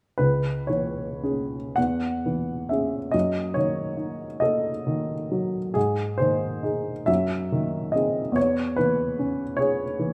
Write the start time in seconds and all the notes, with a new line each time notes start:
0.18 C#2 B4
0.67 E3 C#5
1.23 C#4 G#4
1.76 E2 F#5
2.26 E3
2.69 C#4 G#4 E5
3.11 F#2 D#5
3.54 D#3 C#5
3.97 D#4
4.40 A4 D#5
4.87 D#3
5.32 F#3
5.74 G#2 G#4
6.18 D#3 C5
6.63 D#4 G#4
7.06 F#2 E5
7.52 D#3
7.92 C4 G#4 D#5
8.32 E2
8.36 C#5
8.76 E3 B4
9.19 C#4
9.57 G#4 C#5
9.99 E3